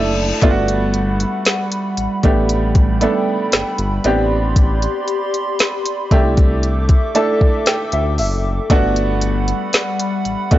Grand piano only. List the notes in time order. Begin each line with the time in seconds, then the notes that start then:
Already playing: A3 D4 E4 A4
0.42 A3 B3 D4 F4
0.50 F#4
2.23 A3 B3 D4 G4
3.01 A3 B3 D4 A4
4.04 B3 C4 D4 G4
6.11 A3 D4 E4 G4
7.15 A3 D4 E4 A4 A5
7.67 G5
7.93 E5
8.19 E5
8.70 A3 B3 D4 F#4
10.51 A3 B3 D4 F#4